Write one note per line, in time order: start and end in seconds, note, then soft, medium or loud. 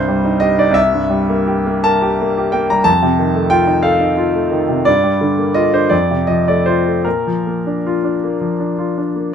0.00 0.69 C2 medium
0.00 0.19 G2 soft
0.00 0.41 C5 medium
0.08 0.36 G3 soft
0.25 0.52 D#4 soft
0.40 0.69 G4 soft
0.40 0.58 D#5 medium
0.58 0.76 D#4 soft
0.58 0.76 D5 medium
0.71 2.80 C2 medium
0.71 1.84 E5 medium
0.93 1.22 G2 soft
1.10 1.40 G3 soft
1.29 1.59 A#3 soft
1.47 1.78 G4 soft
1.67 1.96 A#3 soft
1.84 2.13 A#4 soft
1.84 2.53 A5 medium
2.02 2.30 G4 soft
2.22 2.48 A#3 medium
2.38 2.64 G4 soft
2.52 2.80 A#3 soft
2.52 2.70 G5 medium
2.70 2.87 G3 soft
2.70 2.87 A#5 medium
2.84 4.81 F2 medium
2.84 3.50 A5 medium
3.02 3.29 C3 soft
3.19 3.45 D#3 soft
3.35 3.61 A3 soft
3.50 3.78 F4 soft
3.50 3.84 G5 medium
3.67 3.94 D#4 soft
3.83 4.11 A4 soft
3.83 4.85 F5 medium
4.00 4.28 D#4 soft
4.17 4.45 F4 soft
4.34 4.62 A3 soft
4.51 4.79 D#3 soft
4.69 4.86 C3 soft
4.85 5.89 G2 medium
4.85 5.56 D5 medium
5.03 5.32 G3 soft
5.21 5.49 D3 soft
5.38 5.67 A#3 soft
5.54 5.84 F4 soft
5.54 5.73 D#5 medium
5.74 5.92 D4 soft
5.74 5.92 C5 medium
5.89 7.01 F2 soft
5.89 6.27 D5 medium
6.11 6.40 C3 soft
6.27 6.58 F3 soft
6.27 6.47 D#5 medium
6.48 6.78 A3 soft
6.48 6.67 D5 medium
6.66 6.98 F4 soft
6.66 7.05 C5 medium
6.86 7.05 A3 soft
7.05 9.32 A#2 soft
7.05 8.97 A#4 medium
7.27 7.58 F3 soft
7.47 7.78 A#3 soft
7.67 7.97 D4 soft
7.87 8.16 F4 soft
8.04 8.34 D4 soft
8.24 8.53 A#3 soft
8.41 8.71 F3 soft
8.60 8.90 D4 soft
8.79 9.09 F4 soft
8.98 9.28 D4 soft
9.16 9.35 A#3 soft